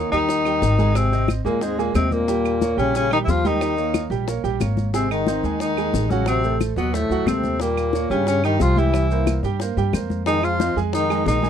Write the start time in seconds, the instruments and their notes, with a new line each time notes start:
Already playing: trombone D#3, tenor saxophone D#4
0.12 upright bass D#2, trombone D#3, grand piano G3 G4 G5, tenor saxophone D#4, high bongo, high conga, maracas
0.29 high bongo, high conga, maracas
0.45 grand piano G3 G4 G5, high bongo, high conga, claves, maracas
0.62 upright bass G#1, high bongo, low bongo, high conga, maracas
0.79 grand piano G#3 G#4 G#5, high bongo, high conga, maracas
0.95 trombone C3, tenor saxophone C4, high bongo, claves, maracas
1.12 grand piano C4 C5 D#5, high conga, maracas
1.28 high bongo, high conga, claves, maracas
1.45 upright bass D#2, trombone A#2, grand piano G#3 G#4 G#5, tenor saxophone A#3, high bongo, high conga, maracas
1.61 trombone G#2, tenor saxophone G#3, grand piano C4 C5 D#5, high bongo, high conga, maracas
1.78 trombone A#2, grand piano G#3 G#4 G#5, tenor saxophone A#3, high bongo, high conga, maracas
1.94 upright bass D#2, trombone C3, grand piano C4 C5 D#5, tenor saxophone C4, high bongo, low bongo, high conga, claves, maracas
2.12 trombone A#2, tenor saxophone A#3, high bongo, high conga, maracas
2.28 grand piano G3 G4 G5, high bongo, high conga, maracas
2.45 high conga, claves, maracas
2.61 grand piano A#3 A#4 C#5, high bongo, high conga, maracas
2.77 upright bass A#1, trombone C#3, grand piano G3 G4 G5, tenor saxophone C#4, high bongo, high conga, maracas
2.95 trombone C#3, tenor saxophone C#4, high bongo, high conga, maracas
3.11 trombone D#3, grand piano G3 G4 G5, tenor saxophone D#4, high bongo, high conga, claves, maracas
3.24 upright bass D#2, trombone E3, tenor saxophone E4
3.28 trombone F3, tenor saxophone F4, high bongo, low bongo, high conga, maracas
3.44 trombone D#3, grand piano G3 G4 G5, tenor saxophone D#4, high bongo, high conga, maracas
3.61 high bongo, claves, maracas
3.77 grand piano A#3 A#4 C#5, high conga, maracas
3.94 high bongo, high conga, claves, maracas
4.10 upright bass A#1, grand piano G3 G4 G5, high bongo, high conga, maracas
4.27 grand piano A#3 A#4 C#5, high bongo, high conga, maracas
4.43 upright bass A#1, grand piano G3 G4 G5, high bongo, high conga, maracas
4.60 upright bass G#1, grand piano A#3 A#4 C#5, high bongo, low bongo, high conga, claves, maracas
4.77 high bongo, high conga, maracas
4.93 trombone C3, grand piano G#3 G#4 G#5, tenor saxophone C4, high bongo, high conga, maracas
5.10 trombone D#3, tenor saxophone D#4, high conga, claves, maracas
5.27 grand piano C4 C5 D#5, high bongo, high conga, maracas
5.43 upright bass D#2, grand piano G#3 G#4 G#5, high bongo, high conga, maracas
5.60 trombone D#3, tenor saxophone D#4, high bongo, high conga, maracas
5.77 grand piano G#3 G#4 G#5, high bongo, high conga, claves, maracas
5.93 upright bass A1, high bongo, low bongo, high conga, maracas
6.10 trombone C#3, grand piano F#3 F#4 F#5, tenor saxophone C#4, high bongo, high conga, maracas
6.26 trombone C3, tenor saxophone C4, high bongo, high conga, claves, maracas
6.44 grand piano A3 A4 C5, high conga, maracas
6.61 high bongo, high conga, claves, maracas
6.76 upright bass D#2, trombone B2, grand piano F#3 F#4 F#5, tenor saxophone B3, high bongo, high conga, maracas
6.94 trombone A2, tenor saxophone A3, grand piano A3 A4 C5, high bongo, high conga, maracas
7.10 upright bass D2, grand piano F#3 F#4 F#5, high bongo, high conga, maracas
7.26 upright bass D#2, trombone C3, grand piano A3 A4 C5, tenor saxophone C4, high bongo, low bongo, high conga, claves, maracas
7.44 high bongo, high conga, maracas
7.60 trombone A#2, grand piano G3 G4 G5, tenor saxophone A#3, high bongo, high conga, maracas
7.77 high conga, claves, maracas
7.93 grand piano A#3 A#4 C#5, high bongo, high conga, maracas
8.10 upright bass G2, trombone C#3, grand piano G3 G4 G5, tenor saxophone C#4, high bongo, high conga, maracas
8.27 trombone C#3, tenor saxophone C#4, high bongo, high conga, maracas
8.44 trombone D#3, grand piano G3 G4 G5, tenor saxophone D#4, high bongo, high conga, claves, maracas
8.59 upright bass C2, trombone F3, tenor saxophone F4, high bongo, low bongo, high conga, maracas
8.76 trombone E3, grand piano G3 G4 G5, tenor saxophone E4, high bongo, high conga, maracas
8.93 high bongo, high conga, claves, maracas
9.10 grand piano A#3 A#4 C5, high conga, maracas
9.27 high bongo, high conga, claves, maracas
9.43 upright bass G2, grand piano G3 G4 G5, high bongo, high conga, maracas
9.60 grand piano A#3 A#4 C5, high bongo, high conga, maracas
9.77 upright bass G2, grand piano G3 G4 G5, high bongo, high conga, maracas
9.93 upright bass F2, grand piano A#3 A#4 C5, high bongo, low bongo, high conga, claves, maracas
10.10 high bongo, high conga, maracas
10.26 trombone D#3, grand piano G#3 G#4 G#5, tenor saxophone D#4, high bongo, maracas
10.43 trombone F3, tenor saxophone F4, high conga, claves, maracas
10.60 grand piano C4 C5 D#5, high bongo, high conga, maracas
10.76 upright bass F2, grand piano G#3 G#4 G#5, high bongo, high conga, maracas
10.93 trombone D#3, tenor saxophone D#4, high bongo, high conga, maracas
11.10 grand piano G#3 G#4 G#5, high bongo, high conga, claves, maracas
11.26 upright bass A#1, trombone D#3, tenor saxophone D#4, high bongo, low bongo, high conga, maracas
11.42 grand piano G#3 G#4 G#5, high bongo, high conga, maracas